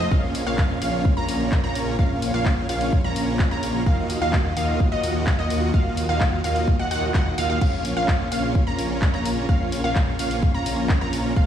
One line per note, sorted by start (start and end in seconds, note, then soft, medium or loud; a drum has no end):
0.11 0.44 A#1 loud
0.11 0.44 A#3 medium
0.11 0.44 C#4 medium
0.11 0.44 F4 medium
0.11 0.44 C#5 medium
0.11 0.44 F5 medium
0.11 kick loud
0.35 open hi-hat loud
0.47 0.79 A#1 loud
0.47 0.79 A#3 medium
0.47 0.79 C#4 medium
0.47 0.79 F4 medium
0.47 0.79 C#5 medium
0.47 0.79 F5 loud
0.58 kick loud
0.58 clap loud
0.82 1.15 A#1 medium
0.82 1.14 A#3 medium
0.82 1.14 C#4 medium
0.82 1.14 F4 medium
0.82 1.14 C#5 medium
0.82 1.14 F5 medium
0.82 open hi-hat loud
1.05 kick loud
1.17 1.61 A#1 loud
1.17 1.61 A#3 medium
1.17 1.61 C#4 medium
1.17 1.61 F4 medium
1.17 1.61 C#5 medium
1.17 1.61 A#5 loud
1.29 open hi-hat loud
1.52 kick loud
1.52 clap loud
1.64 1.97 A#1 medium
1.64 1.96 A#3 medium
1.64 1.96 C#4 medium
1.64 1.96 F4 medium
1.64 1.96 C#5 medium
1.64 1.96 A#5 loud
1.75 open hi-hat loud
1.99 2.32 A#1 loud
1.99 2.31 A#3 medium
1.99 2.31 C#4 medium
1.99 2.31 F4 medium
1.99 2.31 C#5 medium
1.99 2.31 F5 medium
1.99 kick loud
2.22 open hi-hat loud
2.34 2.67 A#1 loud
2.34 2.66 A#3 medium
2.34 2.66 C#4 medium
2.34 2.66 F4 medium
2.34 2.66 C#5 medium
2.34 2.66 F5 loud
2.45 kick loud
2.45 clap loud
2.69 3.02 A#1 medium
2.69 3.02 A#3 medium
2.69 3.02 C#4 medium
2.69 3.02 F4 medium
2.69 3.02 C#5 medium
2.69 3.02 F5 medium
2.69 open hi-hat loud
2.81 open hi-hat medium
2.93 kick loud
3.04 3.49 A#1 loud
3.04 3.48 A#3 loud
3.04 3.48 C#4 medium
3.04 3.48 F4 medium
3.04 3.48 C#5 medium
3.04 3.48 A#5 loud
3.16 open hi-hat loud
3.39 kick loud
3.39 clap loud
3.51 3.84 A#1 loud
3.51 3.84 A#3 medium
3.51 3.84 C#4 medium
3.51 3.84 F4 medium
3.51 3.84 C#5 medium
3.51 3.84 A#5 loud
3.63 open hi-hat loud
3.86 4.19 D#2 medium
3.86 4.19 A#3 medium
3.86 4.19 F4 medium
3.86 4.19 F#4 medium
3.86 4.19 D#5 medium
3.86 4.19 F5 loud
3.86 kick loud
4.10 open hi-hat loud
4.22 4.54 D#2 loud
4.22 4.54 A#3 medium
4.22 4.54 F4 medium
4.22 4.54 F#4 medium
4.22 4.54 D#5 medium
4.22 4.54 F5 loud
4.33 kick loud
4.33 clap loud
4.57 4.90 D#2 loud
4.57 4.89 A#3 medium
4.57 4.89 F4 medium
4.57 4.89 F#4 medium
4.57 4.89 D#5 medium
4.57 4.89 F5 medium
4.57 open hi-hat loud
4.80 kick loud
4.92 5.36 D#2 loud
4.92 5.36 A#3 loud
4.92 5.36 F4 medium
4.92 5.36 F#4 medium
4.92 5.36 D#5 loud
4.92 5.36 D#5 medium
4.92 5.36 F#5 loud
5.04 open hi-hat loud
5.27 kick loud
5.27 clap loud
5.39 5.72 D#2 loud
5.39 5.71 A#3 medium
5.39 5.71 F4 medium
5.39 5.71 F#4 medium
5.39 5.71 D#5 loud
5.39 5.71 D#5 medium
5.39 5.71 F#5 loud
5.50 open hi-hat loud
5.74 6.07 D#2 loud
5.74 6.06 A#3 medium
5.74 6.06 F4 medium
5.74 6.06 F#4 medium
5.74 6.06 D#5 medium
5.74 6.06 F5 loud
5.74 6.06 F5 medium
5.74 kick loud
5.97 open hi-hat loud
6.09 6.42 D#2 loud
6.09 6.41 A#3 medium
6.09 6.41 F4 medium
6.09 6.41 F#4 medium
6.09 6.41 D#5 medium
6.09 6.41 F5 loud
6.20 kick loud
6.20 clap loud
6.44 6.77 D#2 loud
6.44 6.77 A#3 medium
6.44 6.77 F4 medium
6.44 6.77 F#4 medium
6.44 6.77 D#5 medium
6.44 6.77 F5 medium
6.44 open hi-hat loud
6.56 open hi-hat medium
6.68 kick loud
6.79 6.89 D#2 loud
6.79 6.89 A#3 medium
6.79 6.89 F4 medium
6.79 6.89 F#4 medium
6.79 6.89 D#5 medium
6.79 6.89 F#5 loud
6.91 7.12 D#2 loud
6.91 7.11 A#3 loud
6.91 7.11 F4 medium
6.91 7.11 F#4 medium
6.91 7.11 D#5 medium
6.91 7.11 F#5 loud
6.91 open hi-hat loud
7.14 7.36 D#2 loud
7.14 7.35 A#3 loud
7.14 7.35 F#4 medium
7.14 7.35 D#5 medium
7.14 7.35 F#5 loud
7.14 kick loud
7.14 clap loud
7.38 7.47 D#2 medium
7.38 7.48 A#3 medium
7.38 7.48 F4 medium
7.38 7.48 F#4 medium
7.38 7.48 D#5 medium
7.38 7.48 F5 loud
7.38 open hi-hat loud
7.50 7.59 D#2 loud
7.50 7.59 A#3 medium
7.50 7.59 F4 medium
7.50 7.59 F#4 medium
7.50 7.59 D#5 medium
7.50 7.59 F5 medium
7.61 7.94 A#1 loud
7.61 7.94 A#3 medium
7.61 7.94 C#4 medium
7.61 7.94 F4 medium
7.61 7.94 C#5 medium
7.61 7.94 F5 medium
7.61 kick loud
7.61 crash medium
7.85 open hi-hat loud
7.97 8.29 A#1 loud
7.97 8.29 A#3 medium
7.97 8.29 C#4 medium
7.97 8.29 F4 medium
7.97 8.29 C#5 medium
7.97 8.29 F5 loud
8.08 kick loud
8.08 clap loud
8.32 8.65 A#1 loud
8.32 8.64 A#3 medium
8.32 8.64 C#4 medium
8.32 8.64 F4 medium
8.32 8.64 C#5 medium
8.32 8.64 F5 medium
8.32 open hi-hat loud
8.55 kick loud
8.67 9.11 A#1 loud
8.67 9.11 A#3 loud
8.67 9.11 C#4 medium
8.67 9.11 F4 medium
8.67 9.11 C#5 medium
8.67 9.11 A#5 loud
8.79 open hi-hat loud
9.02 kick loud
9.02 clap loud
9.14 9.47 A#1 medium
9.14 9.46 A#3 loud
9.14 9.46 C#4 medium
9.14 9.46 F4 medium
9.14 9.46 C#5 medium
9.14 9.46 A#5 loud
9.25 open hi-hat loud
9.49 9.82 A#1 loud
9.49 9.81 A#3 medium
9.49 9.81 F4 medium
9.49 9.81 C#5 medium
9.49 9.81 F5 medium
9.49 kick loud
9.72 open hi-hat loud
9.84 10.17 A#1 loud
9.84 10.16 A#3 medium
9.84 10.16 C#4 medium
9.84 10.16 F4 medium
9.84 10.16 C#5 medium
9.84 10.16 F5 loud
9.96 kick loud
9.96 clap loud
10.19 10.52 A#1 loud
10.19 10.52 A#3 medium
10.19 10.52 C#4 medium
10.19 10.52 F4 medium
10.19 10.52 C#5 medium
10.19 10.52 F5 medium
10.19 open hi-hat loud
10.31 open hi-hat medium
10.43 kick loud
10.54 10.99 A#1 loud
10.54 10.98 A#3 medium
10.54 10.98 C#4 medium
10.54 10.98 F4 medium
10.54 10.98 C#5 medium
10.54 10.98 A#5 loud
10.66 open hi-hat loud
10.89 kick loud
10.89 clap loud
11.01 11.34 A#1 medium
11.01 11.34 A#3 medium
11.01 11.34 C#4 medium
11.01 11.34 F4 medium
11.01 11.34 C#5 medium
11.01 11.34 A#5 loud
11.13 open hi-hat loud
11.36 11.46 F1 loud
11.36 11.46 A3 medium
11.36 11.46 C4 medium
11.36 11.46 F4 medium
11.36 11.46 F5 loud
11.36 11.46 F5 medium
11.36 kick loud